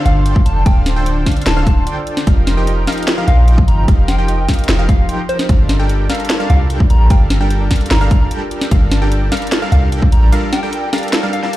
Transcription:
Already playing: D3 D4 F4 A4 C5 D5 F5
0.06 G1 C5 F5, closed hi-hat
0.16 A4
0.26 D3 D4 A4 C5 D5 G5, closed hi-hat
0.36 F5, kick
0.46 F1 F4 A5, closed hi-hat
0.56 A5
0.66 D3 D4 F4 A4 C5 F5 G5, kick, closed hi-hat
0.86 C5, snare, closed hi-hat
0.96 D3 D4 A4 C5 G5
1.06 D5, closed hi-hat
1.16 F5
1.26 D3 D4 A4 C5 F5, kick, snare, closed hi-hat
1.32 closed hi-hat
1.37 closed hi-hat
1.42 closed hi-hat
1.46 D1 F4 A5, snare, closed hi-hat
1.57 D3 D4 A4 C5 F5
1.67 C5 A5, kick, closed hi-hat
1.77 A4 A5
1.87 D3 D4 A4 C5 D5 G5, closed hi-hat
1.97 F5
2.07 F4, closed hi-hat
2.17 snare
2.27 F1 F3 F4 G4 A#4 F5, kick, closed hi-hat
2.47 C5, snare, closed hi-hat
2.57 F3 D#4 G4 A#4 G5
2.67 D#5, closed hi-hat
2.77 F5
2.87 F3 D#4 F4 G4 A#4 F5, snare, closed hi-hat
2.92 closed hi-hat
2.98 closed hi-hat
3.03 closed hi-hat
3.08 F4, snare, closed hi-hat
3.18 F3 D#4 G4 A#4 F5
3.28 A#1 C5 F5, closed hi-hat
3.38 A#4
3.48 F3 D#4 G4 A#4 D#5 G5, closed hi-hat
3.58 F5, kick
3.68 G1 F4 A#5, closed hi-hat
3.78 A#5
3.88 F3 D#4 F4 G4 A#4 F5, kick, closed hi-hat
4.08 C5 G5, snare, closed hi-hat
4.18 F3 D#4 G4 A#4 G5
4.28 D#5, closed hi-hat
4.39 F5
4.48 F3 D#4 F4 G4 A#4 F5, kick, snare, closed hi-hat
4.54 closed hi-hat
4.59 closed hi-hat
4.64 closed hi-hat
4.69 F1 F4, snare, closed hi-hat
4.79 F3 D#4 G4 A#4 F5
4.89 A#4 F5, kick, closed hi-hat
4.99 F5 C6
5.09 F3 D#4 G4 A#4 G5, closed hi-hat
5.19 C5
5.29 C5 F5, closed hi-hat
5.39 D#5, snare
5.49 G1 G3 D4 F4 A4 A#4 F5, kick, closed hi-hat
5.69 A4, snare, closed hi-hat
5.79 G3 D4 G4 A4 A#4 G5
5.89 A#4, closed hi-hat
6.00 D5
6.10 G3 D4 F4 A4 A#4 F5, snare, closed hi-hat
6.15 closed hi-hat
6.20 closed hi-hat
6.25 closed hi-hat
6.30 F4, snare, closed hi-hat
6.40 G3 D4 A4 A#4 F5
6.50 C2 A4 F5, closed hi-hat
6.60 G4
6.70 G3 D4 A4 A#4 G5, closed hi-hat
6.80 D5, kick
6.90 A1 F4 A#5, closed hi-hat
7.00 A#5
7.10 G1 G3 D4 F4 A4 A#4 F5 G5, kick, closed hi-hat
7.30 A4, snare, closed hi-hat
7.41 G3 D4 G4 A4 A#4 G5
7.51 A#4, closed hi-hat
7.61 D5
7.71 G3 D4 F4 A4 A#4 F5, kick, snare, closed hi-hat
7.76 closed hi-hat
7.81 closed hi-hat
7.86 closed hi-hat
7.91 G1 F4 A#5, snare, closed hi-hat
8.01 G3 D4 A4 A#4 F5
8.11 A4 A#5, kick, closed hi-hat
8.21 G4 A#5
8.31 G3 D4 A4 A#4 G5, closed hi-hat
8.41 D5
8.51 F4, closed hi-hat
8.61 snare
8.71 G1 G3 D4 F4 A4 A#4 F5, kick, closed hi-hat
8.91 A4, snare, closed hi-hat
9.02 G3 D4 G4 A4 A#4 G5
9.12 A#4, closed hi-hat
9.22 D5
9.32 G3 D4 F4 A4 A#4 F5, snare, closed hi-hat
9.37 closed hi-hat
9.42 closed hi-hat
9.47 closed hi-hat
9.52 F4, snare, closed hi-hat
9.62 G3 D4 A4 A#4 F5
9.72 C2 A4 F5, closed hi-hat
9.82 G4
9.92 G3 D4 A4 A#4 G5, closed hi-hat
10.02 D5, kick
10.12 A1 F4 A#5, closed hi-hat
10.22 A#5
10.32 G3 D4 F4 A4 A#4 F5, closed hi-hat
10.53 A4 G5, snare, closed hi-hat
10.63 G3 D4 G4 A4 A#4 G5
10.73 A#4, closed hi-hat
10.83 D5
10.93 G3 D4 F4 A4 A#4 F5, snare, closed hi-hat
10.98 closed hi-hat
11.03 closed hi-hat
11.08 closed hi-hat
11.13 F4, snare, closed hi-hat
11.23 G3 D4 A4 A#4 F5
11.33 A4 F5, closed hi-hat
11.43 G3 D4 G4 A4 A#4 F5 A5, snare
11.53 A#4, closed hi-hat

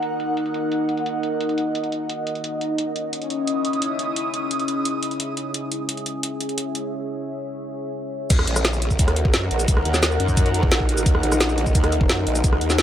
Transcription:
Already playing: D#4 A#4 D#5 F#5
0.03 closed hi-hat
0.20 closed hi-hat
0.37 closed hi-hat
0.46 closed hi-hat
0.54 closed hi-hat
0.72 closed hi-hat
0.89 closed hi-hat
0.97 closed hi-hat
1.06 closed hi-hat
1.23 closed hi-hat
1.41 closed hi-hat
1.49 closed hi-hat
1.58 closed hi-hat
1.75 closed hi-hat
1.84 closed hi-hat
1.92 closed hi-hat
2.09 closed hi-hat
2.27 closed hi-hat
2.35 closed hi-hat
2.44 closed hi-hat
2.61 closed hi-hat
2.78 C#4 G#4 E5, closed hi-hat
2.96 closed hi-hat
3.03 E4 D#6
3.13 closed hi-hat
3.22 closed hi-hat
3.30 closed hi-hat
3.47 closed hi-hat
3.65 closed hi-hat
3.73 closed hi-hat
3.82 closed hi-hat
3.99 closed hi-hat
4.16 closed hi-hat
4.34 closed hi-hat
4.51 closed hi-hat
4.59 closed hi-hat
4.68 closed hi-hat
4.85 closed hi-hat
5.03 closed hi-hat
5.11 closed hi-hat
5.20 closed hi-hat
5.37 closed hi-hat
5.54 C#5, closed hi-hat
5.72 closed hi-hat
5.89 closed hi-hat
5.97 closed hi-hat
6.06 closed hi-hat
6.23 closed hi-hat
6.40 closed hi-hat
6.49 closed hi-hat
6.58 closed hi-hat
6.75 closed hi-hat
8.30 D#2 D#3 D#4 A#4 D#5 F#5, kick, closed hi-hat, crash, cabasa
8.39 A#4, cross-stick
8.47 A#1, closed hi-hat
8.56 cross-stick, cabasa
8.65 snare, closed hi-hat, cabasa
8.73 F#5, cabasa
8.82 closed hi-hat
8.91 kick, cabasa
8.99 D#2, kick, closed hi-hat, cabasa
9.08 cross-stick, closed hi-hat
9.16 closed hi-hat
9.25 kick
9.34 F#2, snare, closed hi-hat, cabasa
9.51 A#1, closed hi-hat
9.59 closed hi-hat, cabasa
9.68 C#2, kick, closed hi-hat, cabasa
9.77 cross-stick
9.85 D#2, closed hi-hat
9.94 snare, cabasa
10.03 snare, closed hi-hat, cabasa
10.11 cabasa
10.20 F#2, closed hi-hat
10.28 kick, cabasa
10.37 kick, closed hi-hat, cabasa
10.46 closed hi-hat
10.54 closed hi-hat
10.63 kick
10.72 A#1, snare, closed hi-hat, cabasa
10.80 kick
10.89 closed hi-hat
10.97 closed hi-hat, cabasa
11.06 D#2, kick, closed hi-hat, cabasa
11.15 cross-stick
11.23 A#1, closed hi-hat
11.32 cross-stick, cabasa
11.41 snare, closed hi-hat, cabasa
11.49 cabasa
11.58 closed hi-hat
11.66 kick, cabasa
11.75 D#2, kick, closed hi-hat, cabasa
11.84 cross-stick, closed hi-hat
11.92 closed hi-hat
12.01 kick
12.09 F#2, snare, closed hi-hat, cabasa
12.27 A#1, closed hi-hat
12.35 closed hi-hat, cabasa
12.44 C#2, kick, closed hi-hat, cabasa
12.53 cross-stick
12.61 D#2, closed hi-hat
12.70 snare, cabasa
12.78 snare, closed hi-hat, cabasa

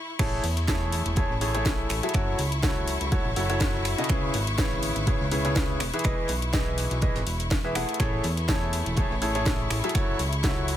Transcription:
Already playing: E3 E4 G#4 B4 D#5 C#6
0.19 A1 A3 E4 G#4 A4 C#5 C#6, finger snap, kick, closed hi-hat, crash
0.44 E2, closed hi-hat, open hi-hat
0.56 snare, closed hi-hat
0.68 A3 E4 G#4 A4 C#5, kick, snare, closed hi-hat
0.81 snare
0.92 closed hi-hat, open hi-hat
1.06 E1, snare, closed hi-hat
1.16 A3 E4 G#4 A4 C#5, kick, closed hi-hat
1.30 A1, snare
1.41 A3 E4 G#4 A4 C#5, closed hi-hat, open hi-hat
1.55 A3 E4 G#4 A4 C#5, closed hi-hat
1.66 kick, snare, closed hi-hat
1.89 A1, finger snap, closed hi-hat, open hi-hat
2.03 F#3 E4 G#4 A4 E5, closed hi-hat
2.09 closed hi-hat
2.14 F#1 F#3 E4 F#4 A4 C#5, finger snap, kick, closed hi-hat
2.38 C#2, closed hi-hat, open hi-hat
2.52 closed hi-hat
2.63 F#3 E4 F#4 A4 C#5, kick, snare, closed hi-hat
2.88 closed hi-hat, open hi-hat
3.01 C#2, closed hi-hat
3.12 F#3 E4 F#4 A4 C#5, kick, closed hi-hat
3.25 A1
3.36 F#1 F#3 E4 F#4 A4 C#5, closed hi-hat, open hi-hat
3.50 F#3 E4 F#4 A4 C#5, closed hi-hat
3.60 kick, snare, closed hi-hat
3.75 snare
3.85 finger snap, closed hi-hat, open hi-hat
3.98 C#3 E4 F#4 A4 D#5, closed hi-hat
4.04 closed hi-hat
4.09 C#2 C#3 E4 G#4 B4 C#5, finger snap, kick, closed hi-hat
4.33 G#1, closed hi-hat, open hi-hat
4.47 snare, closed hi-hat
4.58 C#3 E4 G#4 B4 C#5, kick, snare, closed hi-hat
4.72 snare
4.82 closed hi-hat, open hi-hat
4.96 G#1, snare, closed hi-hat
5.07 C#3 E4 G#4 B4 C#5, kick, closed hi-hat
5.20 C#2, snare
5.31 C#3 E4 G#4 B4 C#5, closed hi-hat, open hi-hat
5.45 C#3 E4 G#4 B4 C#5, closed hi-hat
5.56 kick, snare, closed hi-hat
5.80 E1, finger snap, closed hi-hat, open hi-hat
5.94 E3 E4 G#4 B4 E5, closed hi-hat
5.99 closed hi-hat
6.04 E1 E3 E4 G#4 B4 D#5, finger snap, kick, closed hi-hat
6.28 B1, closed hi-hat, open hi-hat
6.42 closed hi-hat
6.53 E3 E4 G#4 B4 D#5, kick, snare, closed hi-hat
6.78 snare, closed hi-hat, open hi-hat
6.91 B1, snare, closed hi-hat
7.02 E3 E4 G#4 B4 D#5, kick, closed hi-hat
7.16 G#1, snare, closed hi-hat
7.26 E1, snare, open hi-hat
7.40 closed hi-hat
7.51 kick, snare, closed hi-hat
7.64 E3 E4 G#4 B4 E5, snare
7.75 A3 E4 G#4 B4 F#5, finger snap, closed hi-hat, open hi-hat
7.89 closed hi-hat
7.94 closed hi-hat
8.00 A1 A3 E4 G#4 A4 C#5 C#6, finger snap, kick, closed hi-hat
8.24 E2, closed hi-hat, open hi-hat
8.37 snare, closed hi-hat
8.48 A3 E4 G#4 A4 C#5, kick, snare, closed hi-hat
8.62 snare
8.73 closed hi-hat, open hi-hat
8.86 E1, snare, closed hi-hat
8.97 A3 E4 G#4 A4 C#5, kick, closed hi-hat
9.10 A1, snare
9.22 A3 E4 G#4 A4 C#5, closed hi-hat, open hi-hat
9.35 A3 E4 G#4 A4 C#5, closed hi-hat
9.46 kick, snare, closed hi-hat
9.71 A1, finger snap, closed hi-hat, open hi-hat
9.84 F#3 E4 G#4 A4 E5, closed hi-hat
9.89 closed hi-hat
9.95 F#1 F#3 E4 F#4 A4 C#5, finger snap, kick, closed hi-hat
10.19 C#2, closed hi-hat, open hi-hat
10.33 closed hi-hat
10.43 F#3 E4 F#4 A4 C#5, kick, snare, closed hi-hat
10.68 closed hi-hat, open hi-hat

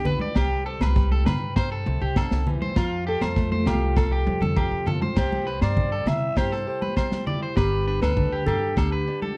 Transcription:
Already playing: B1 D3 G3 D4 G4
0.05 B4, low conga
0.20 D5, high conga
0.35 C2 C3 G4, kick, snare, low agogo
0.66 A4 C5
0.81 C2 B4, snare, high conga, low agogo
0.95 G3, kick, snare
1.11 A4, high conga
1.26 G2 G4 B4, snare, high conga, low conga, low agogo
1.56 C5, kick, snare, low agogo
1.72 A4
1.86 C2 C3
2.01 C2 G4
2.16 D3 A4, kick, snare, low agogo
2.31 C2, snare
2.47 E3, low conga
2.62 C5, high conga
2.76 F2 F3 F4, kick, snare, low agogo
3.07 G4 A4
3.21 F2 C5, snare, high conga, low agogo
3.36 A3, kick, snare
3.52 C5, high conga
3.66 C2 F4 G4, snare, high conga, low conga, low agogo
3.96 A4, kick, snare, low agogo
4.12 G4
4.26 F2 C3, high tom
4.41 F2 A4, high tom, low conga
4.57 C4 G4, kick, mid tom, low agogo
4.71 F2
4.87 F4 A4, floor tom, low conga
5.02 C5, floor tom, high conga
5.16 C2 C3 G4 C5, kick, snare, crash, low agogo
5.32 high conga
5.47 G4 B4
5.61 G2 C5 D5, snare, low agogo
5.76 G3, kick, low conga
5.92 A4
6.06 C3 E4 E5, muted clean electric guitar stroke, snare, low conga, low agogo
6.36 G2 C3 G4 C5, kick, snare, low agogo
6.52 A4, snare
6.67 G4 C5
6.82 B4, high conga
6.96 G3 C5, kick, snare, low agogo
7.12 snare, high conga
7.27 E4 D5, low conga
7.43 C5
7.55 G1 G3 G4 B4, kick, snare, low agogo
7.87 D4 B4
8.02 D2 A4 B4, snare, low agogo
8.16 D4, kick, low conga
8.32 G4
8.46 G2 G4 A4, low conga, low agogo
8.76 D2 D3 G4 A4, kick, snare, low agogo
8.92 B4
9.07 D4
9.22 A4, high conga

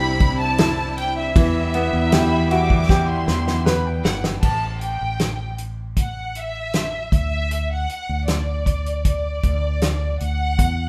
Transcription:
Already playing: C2 C3 G3 C4 D4 E4 G4 B5
0.20 kick, ride
0.40 A5
0.58 E4, snare, ride
0.97 G5, ride
1.18 E5
1.36 E2 E3 G3 B3 E4, kick, ride
1.74 B3, ride
1.93 E2
2.06 A#5
2.12 G4 B5, snare, ride
2.51 F#4 D6, ride
2.70 kick
2.89 G4, kick, snare
3.08 C6
3.28 E2, snare
3.48 snare
3.65 B4 B5, snare
3.85 G5
4.04 G1 F#5, snare
4.24 snare
4.41 A1 A5, kick, crash
4.79 G5, closed hi-hat
5.01 A1
5.19 snare, closed hi-hat
5.58 closed hi-hat
5.97 F#5, kick, closed hi-hat
6.35 E5, closed hi-hat
6.73 snare, closed hi-hat
7.12 D2 E5, kick, closed hi-hat
7.51 closed hi-hat
7.72 F#5
7.89 closed hi-hat
8.09 D2
8.28 D5, snare, closed hi-hat
8.66 kick, closed hi-hat
8.86 closed hi-hat
9.05 D5, kick, closed hi-hat
9.43 D2, kick, closed hi-hat
9.81 snare, closed hi-hat
10.20 D2 F#5, closed hi-hat
10.59 E2, kick, closed hi-hat

